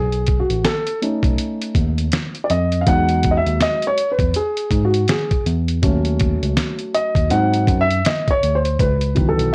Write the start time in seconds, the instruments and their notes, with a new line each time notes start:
Already playing: tine electric piano B1, grand piano G#4
0.12 closed hi-hat
0.27 kick, closed hi-hat
0.40 grand piano F#4
0.50 tine electric piano A1, closed hi-hat
0.65 grand piano A4, snare, closed hi-hat
0.87 closed hi-hat
1.02 grand piano A3 C#4 D#4, closed hi-hat
1.23 tine electric piano B1, kick, closed hi-hat
1.38 closed hi-hat
1.62 closed hi-hat
1.75 tine electric piano D#2, kick, closed hi-hat
1.98 closed hi-hat
2.12 snare, closed hi-hat
2.35 closed hi-hat
2.44 grand piano D5
2.50 tine electric piano F2, grand piano D#5, closed hi-hat
2.72 closed hi-hat
2.81 grand piano F5
2.86 tine electric piano E2, grand piano F#3 G#3 D#4 F#5, kick, closed hi-hat
3.09 closed hi-hat
3.23 kick, closed hi-hat
3.31 grand piano D#5
3.37 grand piano E5
3.46 tine electric piano D#2, closed hi-hat
3.60 grand piano D#5, snare, closed hi-hat
3.82 closed hi-hat
3.87 grand piano C#5
3.98 closed hi-hat
4.12 grand piano B4
4.19 tine electric piano E2, kick, closed hi-hat
4.34 grand piano G#4, closed hi-hat
4.57 closed hi-hat
4.71 tine electric piano G#2, kick, closed hi-hat
4.85 grand piano F#4
4.94 closed hi-hat
5.08 grand piano G#4, snare, closed hi-hat
5.31 kick, closed hi-hat
5.46 tine electric piano E2, closed hi-hat
5.68 closed hi-hat
5.83 tine electric piano D#2, grand piano F#3 A3 C#4, kick, closed hi-hat
6.05 closed hi-hat
6.19 kick, closed hi-hat
6.42 tine electric piano C#2, closed hi-hat
6.57 snare, closed hi-hat
6.79 closed hi-hat
6.94 grand piano D#5, closed hi-hat
7.15 tine electric piano D#2, kick, closed hi-hat
7.30 tine electric piano G#2, grand piano F#3 C4 D#4 F#5, closed hi-hat
7.54 closed hi-hat
7.67 tine electric piano F#2, kick, closed hi-hat
7.81 grand piano E5
7.91 closed hi-hat
8.05 grand piano D#5, snare, closed hi-hat
8.28 grand piano C#5, kick, closed hi-hat
8.43 tine electric piano D2, closed hi-hat
8.55 grand piano C5
8.65 closed hi-hat
8.80 tine electric piano C#2, grand piano B4, kick, closed hi-hat
9.01 closed hi-hat
9.15 grand piano D#3 E3 F#3 B3, kick, closed hi-hat
9.29 grand piano A4
9.39 tine electric piano B1, closed hi-hat